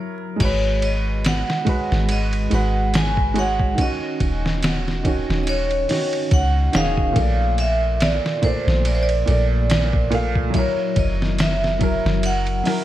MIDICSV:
0, 0, Header, 1, 5, 480
1, 0, Start_track
1, 0, Key_signature, 5, "minor"
1, 0, Tempo, 845070
1, 228, Time_signature, 4, 2, 24, 8
1, 7295, End_track
2, 0, Start_track
2, 0, Title_t, "Vibraphone"
2, 0, Program_c, 0, 11
2, 240, Note_on_c, 0, 73, 88
2, 480, Note_on_c, 0, 75, 83
2, 481, Note_off_c, 0, 73, 0
2, 721, Note_off_c, 0, 75, 0
2, 721, Note_on_c, 0, 78, 95
2, 1203, Note_on_c, 0, 75, 93
2, 1209, Note_off_c, 0, 78, 0
2, 1419, Note_off_c, 0, 75, 0
2, 1443, Note_on_c, 0, 78, 92
2, 1682, Note_off_c, 0, 78, 0
2, 1686, Note_on_c, 0, 80, 106
2, 1924, Note_off_c, 0, 80, 0
2, 1926, Note_on_c, 0, 78, 101
2, 2164, Note_off_c, 0, 78, 0
2, 2165, Note_on_c, 0, 75, 91
2, 2854, Note_off_c, 0, 75, 0
2, 3087, Note_on_c, 0, 75, 71
2, 3115, Note_off_c, 0, 75, 0
2, 3120, Note_on_c, 0, 73, 103
2, 3599, Note_on_c, 0, 78, 111
2, 3608, Note_off_c, 0, 73, 0
2, 3840, Note_off_c, 0, 78, 0
2, 3842, Note_on_c, 0, 77, 112
2, 4316, Note_on_c, 0, 76, 100
2, 4329, Note_off_c, 0, 77, 0
2, 4555, Note_on_c, 0, 74, 88
2, 4559, Note_off_c, 0, 76, 0
2, 4797, Note_on_c, 0, 72, 94
2, 4799, Note_off_c, 0, 74, 0
2, 5038, Note_on_c, 0, 74, 89
2, 5039, Note_off_c, 0, 72, 0
2, 5075, Note_off_c, 0, 74, 0
2, 5083, Note_on_c, 0, 72, 76
2, 5123, Note_off_c, 0, 72, 0
2, 5127, Note_on_c, 0, 74, 87
2, 5730, Note_off_c, 0, 74, 0
2, 6002, Note_on_c, 0, 73, 84
2, 6242, Note_off_c, 0, 73, 0
2, 6244, Note_on_c, 0, 75, 89
2, 6483, Note_off_c, 0, 75, 0
2, 6483, Note_on_c, 0, 76, 91
2, 6933, Note_off_c, 0, 76, 0
2, 6962, Note_on_c, 0, 78, 101
2, 7295, Note_off_c, 0, 78, 0
2, 7295, End_track
3, 0, Start_track
3, 0, Title_t, "Felt piano"
3, 0, Program_c, 1, 0
3, 0, Control_c, 1, 64, 127
3, 0, Note_on_c, 1, 54, 82
3, 0, Note_on_c, 1, 64, 77
3, 0, Note_on_c, 1, 70, 95
3, 192, Note_off_c, 1, 54, 0
3, 204, Note_off_c, 1, 64, 0
3, 205, Note_on_c, 1, 56, 69
3, 216, Note_off_c, 1, 70, 0
3, 230, Note_on_c, 1, 66, 66
3, 234, Control_c, 1, 64, 0
3, 253, Note_on_c, 1, 71, 77
3, 343, Control_c, 1, 64, 127
3, 911, Note_off_c, 1, 56, 0
3, 924, Note_off_c, 1, 66, 0
3, 935, Note_off_c, 1, 71, 0
3, 937, Note_on_c, 1, 56, 81
3, 949, Note_on_c, 1, 66, 74
3, 960, Note_on_c, 1, 71, 83
3, 1022, Note_off_c, 1, 56, 0
3, 1028, Note_off_c, 1, 66, 0
3, 1034, Note_off_c, 1, 71, 0
3, 1421, Note_on_c, 1, 56, 75
3, 1432, Note_on_c, 1, 66, 67
3, 1445, Note_on_c, 1, 71, 83
3, 1879, Note_off_c, 1, 56, 0
3, 1885, Note_off_c, 1, 66, 0
3, 1891, Note_off_c, 1, 71, 0
3, 1898, Note_on_c, 1, 56, 94
3, 1908, Note_on_c, 1, 66, 85
3, 1921, Note_on_c, 1, 73, 101
3, 2118, Note_off_c, 1, 56, 0
3, 2123, Note_off_c, 1, 66, 0
3, 2127, Note_on_c, 1, 51, 70
3, 2129, Note_off_c, 1, 73, 0
3, 2152, Note_on_c, 1, 61, 68
3, 2154, Control_c, 1, 64, 0
3, 2175, Note_on_c, 1, 66, 84
3, 2248, Control_c, 1, 64, 127
3, 2832, Note_off_c, 1, 51, 0
3, 2845, Note_off_c, 1, 61, 0
3, 2856, Note_off_c, 1, 66, 0
3, 2860, Note_on_c, 1, 51, 79
3, 2870, Note_on_c, 1, 61, 74
3, 2883, Note_on_c, 1, 66, 87
3, 2944, Note_off_c, 1, 51, 0
3, 2949, Note_off_c, 1, 61, 0
3, 2955, Note_off_c, 1, 66, 0
3, 3341, Note_on_c, 1, 51, 80
3, 3353, Note_on_c, 1, 61, 71
3, 3364, Note_on_c, 1, 66, 85
3, 3799, Note_off_c, 1, 51, 0
3, 3805, Note_off_c, 1, 61, 0
3, 3811, Note_off_c, 1, 66, 0
3, 3819, Note_on_c, 1, 51, 98
3, 3832, Note_on_c, 1, 61, 85
3, 3844, Note_on_c, 1, 68, 101
3, 4038, Note_off_c, 1, 51, 0
3, 4045, Note_off_c, 1, 61, 0
3, 4046, Note_on_c, 1, 46, 74
3, 4051, Note_off_c, 1, 68, 0
3, 4069, Note_on_c, 1, 57, 67
3, 4075, Control_c, 1, 64, 0
3, 4094, Note_on_c, 1, 74, 85
3, 4183, Control_c, 1, 64, 127
3, 4752, Note_off_c, 1, 46, 0
3, 4763, Note_off_c, 1, 57, 0
3, 4776, Note_off_c, 1, 74, 0
3, 4781, Note_on_c, 1, 46, 80
3, 4793, Note_on_c, 1, 57, 73
3, 4805, Note_on_c, 1, 74, 94
3, 4865, Note_off_c, 1, 46, 0
3, 4870, Note_off_c, 1, 57, 0
3, 4876, Note_off_c, 1, 74, 0
3, 5258, Note_on_c, 1, 46, 77
3, 5270, Note_on_c, 1, 57, 70
3, 5282, Note_on_c, 1, 74, 88
3, 5718, Note_off_c, 1, 46, 0
3, 5724, Note_off_c, 1, 57, 0
3, 5730, Note_off_c, 1, 74, 0
3, 5739, Note_on_c, 1, 46, 98
3, 5752, Note_on_c, 1, 57, 87
3, 5762, Note_on_c, 1, 77, 110
3, 5958, Note_off_c, 1, 46, 0
3, 5964, Note_on_c, 1, 54, 75
3, 5965, Note_off_c, 1, 57, 0
3, 5970, Note_off_c, 1, 77, 0
3, 5989, Note_on_c, 1, 64, 69
3, 5995, Control_c, 1, 64, 0
3, 6013, Note_on_c, 1, 70, 81
3, 6106, Control_c, 1, 64, 127
3, 6671, Note_off_c, 1, 54, 0
3, 6683, Note_off_c, 1, 64, 0
3, 6695, Note_off_c, 1, 70, 0
3, 6698, Note_on_c, 1, 54, 84
3, 6709, Note_on_c, 1, 64, 68
3, 6721, Note_on_c, 1, 70, 87
3, 6783, Note_off_c, 1, 54, 0
3, 6788, Note_off_c, 1, 64, 0
3, 6794, Note_off_c, 1, 70, 0
3, 7178, Note_on_c, 1, 54, 76
3, 7188, Note_on_c, 1, 64, 69
3, 7201, Note_on_c, 1, 70, 89
3, 7295, Note_off_c, 1, 54, 0
3, 7295, Note_off_c, 1, 64, 0
3, 7295, Note_off_c, 1, 70, 0
3, 7295, End_track
4, 0, Start_track
4, 0, Title_t, "808-style bass"
4, 0, Program_c, 2, 38
4, 229, Note_on_c, 2, 32, 96
4, 818, Note_off_c, 2, 32, 0
4, 1090, Note_on_c, 2, 32, 77
4, 1411, Note_off_c, 2, 32, 0
4, 1434, Note_on_c, 2, 32, 90
4, 2131, Note_off_c, 2, 32, 0
4, 2390, Note_on_c, 2, 27, 93
4, 2978, Note_off_c, 2, 27, 0
4, 3009, Note_on_c, 2, 27, 73
4, 3330, Note_off_c, 2, 27, 0
4, 3588, Note_on_c, 2, 37, 79
4, 3803, Note_off_c, 2, 37, 0
4, 3835, Note_on_c, 2, 27, 79
4, 4046, Note_off_c, 2, 27, 0
4, 4070, Note_on_c, 2, 34, 98
4, 4658, Note_off_c, 2, 34, 0
4, 4926, Note_on_c, 2, 34, 82
4, 5249, Note_off_c, 2, 34, 0
4, 5270, Note_on_c, 2, 34, 91
4, 5969, Note_off_c, 2, 34, 0
4, 6228, Note_on_c, 2, 30, 96
4, 6817, Note_off_c, 2, 30, 0
4, 6847, Note_on_c, 2, 30, 77
4, 7170, Note_off_c, 2, 30, 0
4, 7295, End_track
5, 0, Start_track
5, 0, Title_t, "Drums"
5, 228, Note_on_c, 9, 36, 101
5, 228, Note_on_c, 9, 49, 88
5, 228, Note_on_c, 9, 51, 88
5, 284, Note_off_c, 9, 36, 0
5, 284, Note_off_c, 9, 49, 0
5, 284, Note_off_c, 9, 51, 0
5, 467, Note_on_c, 9, 51, 69
5, 524, Note_off_c, 9, 51, 0
5, 707, Note_on_c, 9, 51, 83
5, 717, Note_on_c, 9, 38, 108
5, 764, Note_off_c, 9, 51, 0
5, 773, Note_off_c, 9, 38, 0
5, 851, Note_on_c, 9, 38, 47
5, 908, Note_off_c, 9, 38, 0
5, 947, Note_on_c, 9, 36, 94
5, 947, Note_on_c, 9, 51, 63
5, 1003, Note_off_c, 9, 51, 0
5, 1004, Note_off_c, 9, 36, 0
5, 1090, Note_on_c, 9, 38, 46
5, 1147, Note_off_c, 9, 38, 0
5, 1185, Note_on_c, 9, 51, 88
5, 1242, Note_off_c, 9, 51, 0
5, 1322, Note_on_c, 9, 51, 45
5, 1379, Note_off_c, 9, 51, 0
5, 1426, Note_on_c, 9, 51, 65
5, 1483, Note_off_c, 9, 51, 0
5, 1668, Note_on_c, 9, 51, 85
5, 1677, Note_on_c, 9, 38, 116
5, 1725, Note_off_c, 9, 51, 0
5, 1734, Note_off_c, 9, 38, 0
5, 1802, Note_on_c, 9, 36, 96
5, 1859, Note_off_c, 9, 36, 0
5, 1906, Note_on_c, 9, 51, 64
5, 1963, Note_off_c, 9, 51, 0
5, 2042, Note_on_c, 9, 36, 86
5, 2099, Note_off_c, 9, 36, 0
5, 2147, Note_on_c, 9, 36, 102
5, 2147, Note_on_c, 9, 51, 86
5, 2204, Note_off_c, 9, 36, 0
5, 2204, Note_off_c, 9, 51, 0
5, 2387, Note_on_c, 9, 36, 93
5, 2387, Note_on_c, 9, 51, 66
5, 2444, Note_off_c, 9, 36, 0
5, 2444, Note_off_c, 9, 51, 0
5, 2532, Note_on_c, 9, 38, 42
5, 2589, Note_off_c, 9, 38, 0
5, 2627, Note_on_c, 9, 51, 80
5, 2636, Note_on_c, 9, 38, 107
5, 2684, Note_off_c, 9, 51, 0
5, 2693, Note_off_c, 9, 38, 0
5, 2772, Note_on_c, 9, 38, 38
5, 2829, Note_off_c, 9, 38, 0
5, 2868, Note_on_c, 9, 36, 94
5, 2868, Note_on_c, 9, 51, 65
5, 2924, Note_off_c, 9, 36, 0
5, 2925, Note_off_c, 9, 51, 0
5, 3013, Note_on_c, 9, 38, 45
5, 3070, Note_off_c, 9, 38, 0
5, 3107, Note_on_c, 9, 51, 90
5, 3163, Note_off_c, 9, 51, 0
5, 3242, Note_on_c, 9, 51, 44
5, 3298, Note_off_c, 9, 51, 0
5, 3346, Note_on_c, 9, 46, 81
5, 3355, Note_on_c, 9, 38, 45
5, 3403, Note_off_c, 9, 46, 0
5, 3412, Note_off_c, 9, 38, 0
5, 3481, Note_on_c, 9, 51, 44
5, 3538, Note_off_c, 9, 51, 0
5, 3585, Note_on_c, 9, 51, 74
5, 3587, Note_on_c, 9, 36, 100
5, 3642, Note_off_c, 9, 51, 0
5, 3643, Note_off_c, 9, 36, 0
5, 3824, Note_on_c, 9, 51, 65
5, 3833, Note_on_c, 9, 38, 112
5, 3881, Note_off_c, 9, 51, 0
5, 3890, Note_off_c, 9, 38, 0
5, 3962, Note_on_c, 9, 36, 88
5, 4018, Note_off_c, 9, 36, 0
5, 4066, Note_on_c, 9, 51, 85
5, 4067, Note_on_c, 9, 36, 108
5, 4123, Note_off_c, 9, 51, 0
5, 4124, Note_off_c, 9, 36, 0
5, 4305, Note_on_c, 9, 51, 67
5, 4362, Note_off_c, 9, 51, 0
5, 4546, Note_on_c, 9, 51, 83
5, 4556, Note_on_c, 9, 38, 116
5, 4603, Note_off_c, 9, 51, 0
5, 4612, Note_off_c, 9, 38, 0
5, 4691, Note_on_c, 9, 38, 46
5, 4748, Note_off_c, 9, 38, 0
5, 4786, Note_on_c, 9, 51, 67
5, 4787, Note_on_c, 9, 36, 95
5, 4843, Note_off_c, 9, 51, 0
5, 4844, Note_off_c, 9, 36, 0
5, 4930, Note_on_c, 9, 38, 47
5, 4987, Note_off_c, 9, 38, 0
5, 5027, Note_on_c, 9, 51, 86
5, 5084, Note_off_c, 9, 51, 0
5, 5162, Note_on_c, 9, 51, 45
5, 5219, Note_off_c, 9, 51, 0
5, 5268, Note_on_c, 9, 51, 66
5, 5325, Note_off_c, 9, 51, 0
5, 5508, Note_on_c, 9, 51, 87
5, 5517, Note_on_c, 9, 38, 117
5, 5565, Note_off_c, 9, 51, 0
5, 5574, Note_off_c, 9, 38, 0
5, 5642, Note_on_c, 9, 36, 100
5, 5699, Note_off_c, 9, 36, 0
5, 5746, Note_on_c, 9, 51, 61
5, 5803, Note_off_c, 9, 51, 0
5, 5882, Note_on_c, 9, 36, 86
5, 5939, Note_off_c, 9, 36, 0
5, 5986, Note_on_c, 9, 51, 78
5, 5987, Note_on_c, 9, 36, 104
5, 6043, Note_off_c, 9, 36, 0
5, 6043, Note_off_c, 9, 51, 0
5, 6226, Note_on_c, 9, 51, 69
5, 6227, Note_on_c, 9, 36, 97
5, 6282, Note_off_c, 9, 51, 0
5, 6284, Note_off_c, 9, 36, 0
5, 6374, Note_on_c, 9, 38, 41
5, 6430, Note_off_c, 9, 38, 0
5, 6467, Note_on_c, 9, 51, 88
5, 6476, Note_on_c, 9, 38, 109
5, 6523, Note_off_c, 9, 51, 0
5, 6532, Note_off_c, 9, 38, 0
5, 6613, Note_on_c, 9, 38, 38
5, 6669, Note_off_c, 9, 38, 0
5, 6706, Note_on_c, 9, 51, 66
5, 6707, Note_on_c, 9, 36, 99
5, 6763, Note_off_c, 9, 51, 0
5, 6764, Note_off_c, 9, 36, 0
5, 6852, Note_on_c, 9, 38, 47
5, 6908, Note_off_c, 9, 38, 0
5, 6947, Note_on_c, 9, 51, 89
5, 7004, Note_off_c, 9, 51, 0
5, 7082, Note_on_c, 9, 51, 43
5, 7138, Note_off_c, 9, 51, 0
5, 7188, Note_on_c, 9, 46, 79
5, 7197, Note_on_c, 9, 38, 46
5, 7245, Note_off_c, 9, 46, 0
5, 7254, Note_off_c, 9, 38, 0
5, 7295, End_track
0, 0, End_of_file